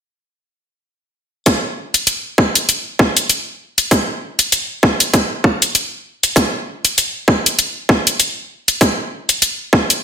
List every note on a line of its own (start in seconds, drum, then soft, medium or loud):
1.46 kick loud
1.46 closed hi-hat medium
1.94 closed hi-hat soft
2.07 closed hi-hat medium
2.38 kick loud
2.55 closed hi-hat medium
2.69 closed hi-hat medium
2.99 kick loud
3.17 closed hi-hat soft
3.30 closed hi-hat medium
3.78 closed hi-hat soft
3.91 kick loud
3.91 closed hi-hat medium
4.39 closed hi-hat soft
4.52 closed hi-hat medium
4.83 kick loud
5.00 closed hi-hat soft
5.14 kick loud
5.14 closed hi-hat medium
5.44 kick medium
5.62 closed hi-hat soft
5.75 closed hi-hat medium
6.23 closed hi-hat medium
6.36 kick loud
6.36 closed hi-hat medium
6.85 closed hi-hat soft
6.98 closed hi-hat medium
7.28 kick loud
7.46 closed hi-hat medium
7.59 closed hi-hat medium
7.89 kick loud
8.07 closed hi-hat soft
8.20 closed hi-hat medium
8.68 closed hi-hat soft
8.81 kick loud
8.81 closed hi-hat medium
9.29 closed hi-hat soft
9.42 closed hi-hat medium
9.73 kick loud
9.90 closed hi-hat soft